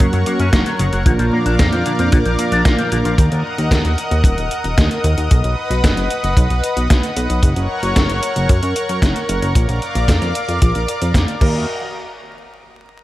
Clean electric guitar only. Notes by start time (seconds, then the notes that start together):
0.00 C#3
0.13 F#3
0.27 A#3
0.40 C#4
0.53 A#3
0.67 F#3
0.80 C#3
0.93 F#3
1.06 D3
1.20 F3
1.33 A#3
1.46 D4
1.59 A#3
1.73 F3
1.86 D3
1.99 F3
2.12 D3
2.26 F3
2.39 A#3
2.52 D4
2.65 A#3
2.79 F3
2.92 D3
3.05 F3